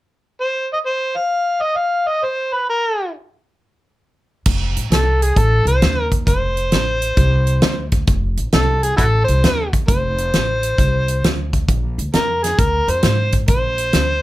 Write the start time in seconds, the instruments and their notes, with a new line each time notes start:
0.41 harmonica C5
0.73 harmonica D#5
0.86 harmonica C5
1.17 harmonica F5
1.63 harmonica D#5
1.77 harmonica F5
2.08 harmonica D#5
2.24 harmonica C5
2.54 harmonica B4
2.69 harmonica A#4
4.46 upright bass F1, kick, crash
4.77 upright bass A1, closed hi-hat
4.90 upright bass C2, harmonica A4, snare, closed hi-hat
5.22 harmonica G#4, closed hi-hat
5.36 upright bass A1, harmonica A4, kick, closed hi-hat
5.65 upright bass C2, harmonica C5, closed hi-hat
5.82 upright bass D#2, snare, closed hi-hat
6.12 kick, closed hi-hat
6.27 upright bass F1, harmonica C5, kick, closed hi-hat
6.57 closed hi-hat
6.72 upright bass A1, snare, closed hi-hat
7.02 closed hi-hat
7.17 upright bass C2, kick, closed hi-hat
7.47 closed hi-hat
7.62 upright bass D2, snare, closed hi-hat
7.92 kick, closed hi-hat
8.07 upright bass F1, kick, closed hi-hat
8.37 upright bass A1, closed hi-hat
8.52 upright bass C2, harmonica A4, snare, closed hi-hat
8.83 harmonica G#4, closed hi-hat
8.97 upright bass A1, harmonica E4 F#4 A4, kick, closed hi-hat
9.24 harmonica C5, closed hi-hat
9.29 upright bass C2
9.44 upright bass D#2, snare, closed hi-hat
9.73 kick, closed hi-hat
9.88 upright bass F1, harmonica C5, kick, closed hi-hat
10.18 closed hi-hat
10.33 upright bass A1, snare, closed hi-hat
10.63 closed hi-hat
10.78 upright bass C2, kick, closed hi-hat
11.08 closed hi-hat
11.23 upright bass D2, snare, closed hi-hat
11.53 kick, closed hi-hat
11.68 upright bass A#1, kick, closed hi-hat
11.98 upright bass D2, closed hi-hat
12.13 upright bass F2, harmonica A#4, snare, closed hi-hat
12.43 harmonica G#4, snare, closed hi-hat
12.58 upright bass D2, harmonica A#4, kick, closed hi-hat
12.88 upright bass F2, harmonica C5, closed hi-hat
13.03 upright bass G#2, snare, closed hi-hat
13.32 kick, closed hi-hat
13.48 upright bass A#1, harmonica C5, kick, closed hi-hat
13.78 closed hi-hat
13.93 upright bass D2, snare, closed hi-hat